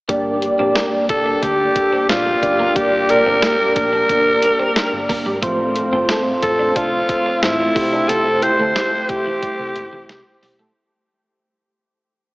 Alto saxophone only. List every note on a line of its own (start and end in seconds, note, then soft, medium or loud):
1.10 1.44 A4 medium
1.43 2.09 G4 medium
2.09 2.78 F4 medium
2.76 3.11 G4 loud
3.10 3.75 A#4 loud
3.76 5.05 A#4 loud
6.43 6.78 A4 medium
6.76 7.45 F4 medium
7.43 8.11 E4 medium
8.09 8.44 A4 loud
8.43 9.11 C5 loud
9.09 10.43 G4 medium